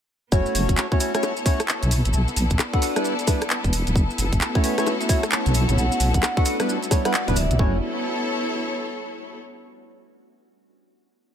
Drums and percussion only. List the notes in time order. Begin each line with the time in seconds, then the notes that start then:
0.32 kick, maracas
0.46 maracas
0.55 open hi-hat, maracas
0.69 kick, closed hi-hat, maracas
0.77 clap, maracas
0.92 kick, closed hi-hat
1.00 open hi-hat, maracas
1.15 cross-stick, closed hi-hat, maracas
1.23 high bongo, maracas
1.37 closed hi-hat, maracas
1.46 kick, open hi-hat, maracas
1.60 cross-stick, closed hi-hat, maracas
1.68 clap, maracas
1.83 closed hi-hat, maracas
1.91 open hi-hat, maracas
2.05 closed hi-hat, maracas
2.13 maracas
2.28 maracas
2.36 open hi-hat, maracas
2.50 kick, closed hi-hat, maracas
2.59 clap, high bongo, maracas
2.73 kick, closed hi-hat
2.82 open hi-hat, maracas
2.96 cross-stick, closed hi-hat, maracas
3.05 maracas
3.19 closed hi-hat, maracas
3.27 kick, open hi-hat, high bongo, maracas
3.41 cross-stick, closed hi-hat, maracas
3.50 clap, maracas
3.64 kick, closed hi-hat, maracas
3.73 open hi-hat, maracas
3.87 closed hi-hat, maracas
3.96 kick, maracas
4.10 maracas
4.18 open hi-hat, maracas
4.33 kick, closed hi-hat, maracas
4.41 clap, maracas
4.55 kick, closed hi-hat
4.64 open hi-hat, maracas
4.78 cross-stick, closed hi-hat, maracas
4.86 high bongo, maracas
5.01 closed hi-hat, maracas
5.09 kick, open hi-hat, maracas
5.23 cross-stick, closed hi-hat, maracas
5.31 clap, maracas
5.46 closed hi-hat, maracas
5.54 open hi-hat, maracas
5.69 closed hi-hat, maracas
5.78 maracas
5.92 maracas
6.00 open hi-hat, maracas
6.14 kick, closed hi-hat, maracas
6.23 clap, high bongo, maracas
6.37 kick, closed hi-hat
6.45 open hi-hat, maracas
6.60 cross-stick, closed hi-hat, maracas
6.69 maracas
6.83 closed hi-hat, maracas
6.91 kick, open hi-hat, high bongo, maracas
7.05 cross-stick, closed hi-hat, maracas
7.14 clap, maracas
7.28 kick, closed hi-hat, maracas
7.36 open hi-hat, maracas
7.51 closed hi-hat, maracas
7.59 kick